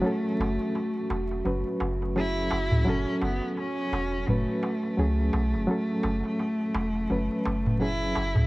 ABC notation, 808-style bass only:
X:1
M:4/4
L:1/16
Q:"Swing 16ths" 1/4=85
K:F#m
V:1 name="808-style bass" clef=bass
z2 F,,, z3 E,,,2 F,,, z F,,,4 F,,, C,, | F,,, z F,,, z3 E,,,2 F,,, z3 C,,2 B,,, F,,, | z2 F,,, z3 E,,,2 F,,, z F,,,4 F,,, C,, |]